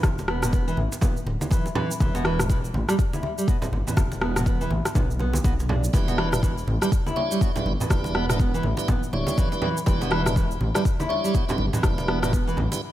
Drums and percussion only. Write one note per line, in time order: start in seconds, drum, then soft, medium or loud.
0.03 kick loud
0.03 cross-stick medium
0.03 high conga loud
0.03 shaker medium
0.18 muted conga medium
0.18 shaker soft
0.28 cross-stick medium
0.42 cross-stick medium
0.42 mid tom medium
0.42 high conga medium
0.42 shaker medium
0.53 kick loud
0.53 muted conga soft
0.53 shaker medium
0.68 shaker soft
0.77 mid tom medium
0.77 high conga medium
0.92 muted conga soft
0.92 shaker medium
1.01 kick loud
1.01 mid tom medium
1.01 high conga loud
1.01 low conga loud
1.01 shaker medium
1.17 shaker soft
1.27 muted conga soft
1.27 high conga medium
1.41 high conga medium
1.41 shaker medium
1.51 kick loud
1.51 low conga medium
1.51 shaker medium
1.66 muted conga soft
1.66 shaker soft
1.75 low conga loud
1.91 shaker medium
2.00 kick loud
2.00 high conga loud
2.00 shaker medium
2.15 muted conga medium
2.15 shaker soft
2.25 cross-stick medium
2.40 cross-stick medium
2.40 mid tom medium
2.40 high conga medium
2.40 shaker medium
2.49 kick loud
2.49 muted conga soft
2.49 shaker medium
2.65 shaker soft
2.74 mid tom medium
2.74 high conga medium
2.89 cross-stick medium
2.89 muted conga soft
2.89 shaker medium
2.99 kick loud
2.99 shaker medium
3.13 high conga medium
3.13 shaker soft
3.23 muted conga soft
3.23 high conga medium
3.38 shaker medium
3.48 kick loud
3.48 shaker medium
3.62 muted conga soft
3.62 low conga medium
3.62 shaker soft
3.73 high conga medium
3.87 mid tom medium
3.87 low conga medium
3.87 shaker medium
3.97 kick loud
3.97 cross-stick medium
3.97 high conga loud
3.97 shaker medium
4.12 muted conga soft
4.12 shaker soft
4.22 cross-stick medium
4.36 cross-stick medium
4.36 mid tom medium
4.36 high conga medium
4.36 shaker medium
4.46 kick loud
4.46 muted conga soft
4.46 shaker medium
4.61 shaker soft
4.71 mid tom medium
4.71 high conga medium
4.85 cross-stick medium
4.85 muted conga soft
4.85 shaker medium
4.95 kick loud
4.95 mid tom medium
4.95 high conga loud
4.95 low conga medium
4.95 shaker medium
5.11 shaker soft
5.19 muted conga soft
5.19 high conga medium
5.33 high conga loud
5.33 shaker medium
5.44 kick loud
5.44 low conga medium
5.44 shaker medium
5.60 muted conga soft
5.60 shaker soft
5.69 low conga loud
5.84 shaker medium
5.94 kick loud
5.94 high conga loud
5.94 shaker medium
6.08 muted conga medium
6.08 shaker soft
6.18 cross-stick medium
6.32 cross-stick medium
6.32 mid tom medium
6.32 high conga medium
6.32 shaker medium
6.43 kick loud
6.43 muted conga soft
6.43 shaker medium
6.58 shaker soft
6.68 mid tom medium
6.68 high conga medium
6.82 cross-stick medium
6.82 muted conga medium
6.82 shaker medium
6.92 kick loud
6.92 shaker medium
7.06 high conga medium
7.06 shaker soft
7.16 muted conga soft
7.16 high conga medium
7.32 shaker medium
7.41 kick loud
7.41 shaker medium
7.56 muted conga soft
7.56 low conga loud
7.56 shaker soft
7.66 high conga medium
7.80 mid tom medium
7.80 low conga medium
7.80 shaker medium
7.90 kick loud
7.90 cross-stick medium
7.90 high conga medium
7.90 shaker medium
8.04 muted conga medium
8.04 shaker soft
8.15 cross-stick medium
8.30 cross-stick medium
8.30 mid tom loud
8.30 high conga medium
8.30 shaker medium
8.39 kick loud
8.39 muted conga soft
8.39 shaker medium
8.55 shaker soft
8.63 mid tom medium
8.63 high conga medium
8.77 muted conga medium
8.77 shaker medium
8.88 kick loud
8.88 mid tom medium
8.88 high conga loud
8.88 low conga medium
8.88 shaker medium
9.03 shaker soft
9.13 muted conga soft
9.13 high conga medium
9.27 high conga loud
9.27 shaker medium
9.38 kick loud
9.38 low conga medium
9.38 shaker medium
9.52 muted conga medium
9.52 shaker soft
9.62 low conga loud
9.77 shaker medium
9.86 kick loud
9.86 high conga loud
9.86 shaker medium
10.02 muted conga medium
10.02 shaker soft
10.12 cross-stick medium
10.26 cross-stick medium
10.26 mid tom loud
10.26 high conga medium
10.26 shaker medium
10.36 kick medium
10.36 muted conga soft
10.36 shaker medium
10.51 shaker soft
10.61 mid tom medium
10.61 high conga medium
10.75 cross-stick medium
10.75 muted conga medium
10.75 shaker medium
10.85 kick loud
10.85 shaker medium
11.00 high conga medium
11.00 shaker soft
11.10 muted conga soft
11.10 high conga medium
11.25 shaker medium
11.35 kick loud
11.35 shaker medium
11.49 muted conga medium
11.49 low conga loud
11.49 shaker soft
11.58 high conga medium
11.73 mid tom medium
11.73 low conga medium
11.73 shaker medium
11.83 kick loud
11.83 cross-stick medium
11.83 high conga loud
11.83 shaker medium
11.98 muted conga medium
11.98 shaker soft
12.08 cross-stick medium
12.23 cross-stick medium
12.23 mid tom loud
12.23 high conga medium
12.23 shaker medium
12.33 kick loud
12.33 muted conga soft
12.33 shaker medium
12.48 shaker soft
12.57 mid tom medium
12.57 high conga medium
12.57 low conga medium
12.72 muted conga medium
12.72 shaker medium